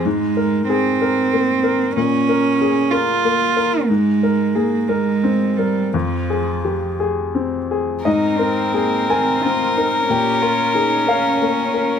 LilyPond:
<<
  \new Staff \with { instrumentName = "Violin" } { \time 6/8 \key aes \major \tempo 4. = 61 r2. | r2. | r2. | r2. |
bes'2.~ | bes'2. | }
  \new Staff \with { instrumentName = "Upright piano" } { \time 6/8 \key aes \major << { r2. | r2. | r2. | r2. |
ees''4. aes''4. | g''4. f''4. | } \\ { aes,8 bes'8 aes'8 bes'8 bes8 bes'8 | bes,8 bes'8 aes'8 bes'8 bes8 bes'8 | aes,8 bes'8 aes'8 bes'8 c'8 bes'8 | f,8 aes'8 g'8 aes'8 c'8 aes'8 |
aes,8 bes'8 aes'8 bes'8 c'8 bes'8 | bes,8 bes'8 aes'8 bes'8 bes8 bes'8 | } >> }
  \new Staff \with { instrumentName = "Viola" } { \time 6/8 \key aes \major r2. | r2. | r2. | r2. |
c'2. | des'2. | }
  \new Staff \with { instrumentName = "Cello" } { \time 6/8 \key aes \major aes4 c'2 | des'4. f'4. | aes4 bes8 aes4 g8 | f4. r4. |
ees'8 c'8 bes8 c'8 f'8 ees'8 | g'8 f'8 ees'8 des'4. | }
>>